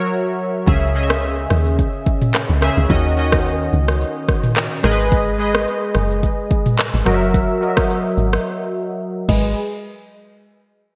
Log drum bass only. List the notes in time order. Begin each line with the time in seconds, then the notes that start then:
0.68 C#2
1.51 D#2
2.50 C#2
2.77 C#2
2.90 D#2
3.73 C#2
4.84 G#1
5.95 F#1
6.94 G#1
7.07 F#1
8.18 G#1
9.29 G#1